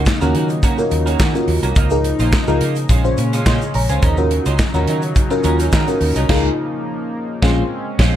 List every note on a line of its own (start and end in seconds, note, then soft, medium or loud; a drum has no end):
0.00 2.86 C#3 medium
0.00 1.74 F#3 medium
0.00 6.25 A#3 medium
0.00 1.74 D#4 loud
0.06 muted clean electric guitar stroke soft
0.06 kick loud
0.06 snare loud
0.06 clap medium
0.06 shaker medium
0.21 0.32 D#2 loud
0.21 0.33 A#3 medium
0.21 0.56 C#4 medium
0.21 0.34 C#4 medium
0.21 0.57 F4 medium
0.21 0.34 F#4 medium
0.21 0.57 F#4 medium
0.21 0.34 A#4 medium
0.21 0.57 A#4 medium
0.21 closed hi-hat soft
0.21 shaker medium
0.35 0.58 D#3 medium
0.35 0.50 A#3 medium
0.35 0.49 C#4 medium
0.35 0.49 F#4 medium
0.35 0.48 A#4 medium
0.35 closed hi-hat medium
0.49 muted clean electric guitar stroke soft
0.49 closed hi-hat medium
0.49 shaker soft
0.63 0.82 A#3 medium
0.63 0.78 C#4 medium
0.63 0.77 F#4 loud
0.63 0.77 A#4 medium
0.63 kick loud
0.63 closed hi-hat medium
0.63 shaker medium
0.78 1.13 C#4 medium
0.78 1.13 F4 medium
0.78 1.13 F#4 medium
0.78 1.13 A#4 medium
0.78 muted clean electric guitar stroke soft
0.78 shaker medium
0.91 1.15 D#2 medium
0.91 muted clean electric guitar stroke soft
0.91 closed hi-hat medium
0.91 shaker soft
1.06 1.19 A#3 medium
1.06 1.19 C#4 medium
1.06 1.19 F#4 medium
1.06 1.19 A#4 medium
1.06 closed hi-hat medium
1.06 shaker medium
1.20 1.32 D#3 loud
1.20 1.38 A#3 medium
1.20 1.34 C#4 medium
1.20 1.34 F#4 medium
1.20 1.33 A#4 medium
1.20 kick loud
1.20 snare loud
1.20 clap loud
1.20 shaker medium
1.34 1.70 C#4 medium
1.34 1.70 F4 medium
1.34 1.70 F#4 medium
1.34 1.70 A#4 medium
1.34 muted clean electric guitar stroke medium
1.34 closed hi-hat soft
1.34 shaker medium
1.48 1.60 D#2 medium
1.48 muted clean electric guitar stroke soft
1.48 open hi-hat medium
1.63 1.74 C2 medium
1.63 1.75 A#3 medium
1.63 1.76 C#4 medium
1.63 1.76 F#4 medium
1.63 1.76 A#4 medium
1.63 closed hi-hat medium
1.63 shaker medium
1.76 2.12 C#2 medium
1.76 2.89 F3 medium
1.76 1.95 A#3 medium
1.76 2.89 D#4 loud
1.76 1.91 D#4 medium
1.76 1.91 F4 medium
1.76 1.90 A#4 medium
1.76 kick loud
1.76 closed hi-hat loud
1.76 shaker medium
1.90 2.26 D#4 loud
1.90 2.26 F4 medium
1.90 2.26 G#4 medium
1.90 2.26 A#4 loud
1.90 muted clean electric guitar stroke soft
1.90 shaker medium
2.04 muted clean electric guitar stroke soft
2.04 closed hi-hat medium
2.19 2.30 A#1 medium
2.19 2.32 A#3 medium
2.19 2.32 D#4 medium
2.19 2.32 F4 medium
2.19 2.33 C5 medium
2.19 closed hi-hat medium
2.19 shaker soft
2.32 muted clean electric guitar stroke medium
2.32 kick loud
2.32 snare loud
2.32 clap medium
2.32 shaker medium
2.47 2.59 C#2 loud
2.47 2.60 A#3 medium
2.47 2.83 D#4 medium
2.47 2.60 D#4 medium
2.47 2.83 F4 medium
2.47 2.61 F4 medium
2.47 2.83 G#4 medium
2.47 2.83 A#4 loud
2.47 2.61 A#4 medium
2.47 shaker medium
2.61 2.84 C#3 medium
2.61 2.76 A#3 medium
2.61 2.76 D#4 medium
2.61 2.76 F4 medium
2.61 2.75 A#4 medium
2.61 closed hi-hat medium
2.75 muted clean electric guitar stroke soft
2.75 closed hi-hat medium
2.75 shaker medium
2.89 3.13 A#1 loud
2.89 4.01 C#3 medium
2.89 4.01 G#3 medium
2.89 3.08 G#3 medium
2.89 4.01 C#4 loud
2.89 3.04 C#4 medium
2.89 3.04 F4 loud
2.89 3.03 C5 loud
2.89 kick loud
2.89 closed hi-hat loud
2.89 shaker medium
3.04 3.39 C#4 medium
3.04 3.39 F4 medium
3.04 3.40 G#4 medium
3.04 3.18 C5 loud
3.04 muted clean electric guitar stroke soft
3.04 shaker soft
3.17 3.41 A#2 medium
3.17 muted clean electric guitar stroke medium
3.17 closed hi-hat medium
3.17 shaker soft
3.33 3.45 G#3 medium
3.33 3.45 C#4 medium
3.33 3.46 F4 medium
3.33 3.46 C5 medium
3.33 closed hi-hat medium
3.33 shaker medium
3.46 3.59 A#2 loud
3.46 3.65 G#3 loud
3.46 3.61 C#4 medium
3.46 3.61 F4 medium
3.46 3.60 C5 medium
3.46 3.74 D#5 medium
3.46 3.73 C6 medium
3.46 kick loud
3.46 snare loud
3.46 clap loud
3.46 shaker medium
3.61 muted clean electric guitar stroke medium
3.61 closed hi-hat soft
3.61 shaker medium
3.74 3.87 A#1 loud
3.74 3.89 C#5 medium
3.74 3.89 A#5 medium
3.74 muted clean electric guitar stroke soft
3.74 open hi-hat medium
3.89 4.00 C#2 medium
3.89 4.02 G#3 medium
3.89 4.02 C#4 medium
3.89 4.03 F4 medium
3.89 4.03 C5 medium
3.89 4.17 C5 medium
3.89 4.16 G#5 medium
3.89 closed hi-hat medium
3.89 shaker soft
4.02 4.38 D#2 medium
4.02 7.39 C#3 medium
4.02 4.21 F#3 medium
4.02 6.27 F#3 medium
4.02 4.18 C#4 loud
4.02 7.39 D#4 loud
4.02 4.17 D#4 loud
4.02 4.17 A#4 loud
4.02 kick loud
4.02 closed hi-hat medium
4.02 shaker medium
4.17 4.53 C#4 medium
4.17 4.53 F4 medium
4.17 4.53 F#4 medium
4.17 4.53 A#4 loud
4.17 muted clean electric guitar stroke soft
4.17 shaker medium
4.31 muted clean electric guitar stroke soft
4.31 closed hi-hat medium
4.46 4.57 C#2 loud
4.46 4.58 F#3 medium
4.46 4.59 C#4 medium
4.46 4.59 D#4 medium
4.46 4.59 C5 medium
4.46 closed hi-hat medium
4.46 shaker soft
4.58 muted clean electric guitar stroke soft
4.58 kick loud
4.58 snare loud
4.58 clap medium
4.58 shaker medium
4.74 4.85 D#2 loud
4.74 4.86 F#3 medium
4.74 5.09 C#4 medium
4.74 4.87 C#4 medium
4.74 4.87 D#4 medium
4.74 5.09 F4 medium
4.74 5.09 F#4 medium
4.74 4.87 A#4 medium
4.74 5.10 A#4 medium
4.74 closed hi-hat soft
4.74 shaker medium
4.87 5.11 D#3 medium
4.87 5.02 F#3 medium
4.87 5.02 C#4 medium
4.87 5.02 D#4 medium
4.87 5.01 A#4 medium
4.87 closed hi-hat medium
5.02 muted clean electric guitar stroke soft
5.02 closed hi-hat medium
5.02 shaker soft
5.16 muted clean electric guitar stroke soft
5.16 kick loud
5.16 closed hi-hat medium
5.16 shaker medium
5.30 5.66 C#4 loud
5.30 5.66 F4 medium
5.30 5.66 F#4 medium
5.30 5.66 A#4 loud
5.30 muted clean electric guitar stroke medium
5.30 shaker medium
5.43 5.68 D#2 medium
5.43 5.59 F#3 medium
5.43 5.59 C#4 medium
5.43 5.58 D#4 loud
5.43 5.58 A#4 medium
5.43 closed hi-hat medium
5.43 shaker soft
5.59 5.71 F#3 medium
5.59 5.72 C#4 medium
5.59 5.72 D#4 medium
5.59 5.72 A#4 medium
5.59 closed hi-hat medium
5.59 shaker medium
5.72 5.85 D#3 loud
5.72 5.91 F#3 medium
5.72 5.87 C#4 medium
5.72 5.87 D#4 medium
5.72 5.86 A#4 medium
5.72 kick loud
5.72 snare loud
5.72 clap medium
5.72 shaker medium
5.87 6.22 C#4 medium
5.87 6.23 F4 medium
5.87 6.23 F#4 medium
5.87 6.23 A#4 loud
5.87 muted clean electric guitar stroke medium
5.87 closed hi-hat soft
5.87 shaker medium
6.01 6.13 D#2 loud
6.01 muted clean electric guitar stroke soft
6.01 open hi-hat medium
6.15 6.27 C2 medium
6.15 6.29 F#3 medium
6.15 6.29 C#4 medium
6.15 6.28 D#4 medium
6.15 6.29 A#4 medium
6.15 closed hi-hat medium
6.15 shaker medium
6.29 6.49 C#2 loud
6.29 7.41 F3 medium
6.29 6.49 G#3 loud
6.29 8.16 A#3 medium
6.29 6.49 D#4 loud
6.29 6.49 F4 loud
6.29 6.49 G#4 loud
6.29 6.49 A#4 loud
6.29 kick loud
6.29 snare loud
6.29 crash medium
7.42 7.62 A#1 loud
7.42 7.62 G#3 loud
7.42 8.16 G#3 medium
7.42 8.16 C4 medium
7.42 7.62 C#4 loud
7.42 8.16 C#4 medium
7.42 7.62 C#4 loud
7.42 7.62 F4 loud
7.42 7.62 G#4 loud
7.42 7.62 C5 medium
7.42 7.63 C5 loud
7.42 kick loud
7.42 snare loud
7.99 8.16 A#1 loud
7.99 8.16 G#3 loud
7.99 8.16 C#4 loud
7.99 8.16 F4 medium
7.99 8.16 C5 medium
7.99 kick loud
7.99 snare loud
7.99 crash medium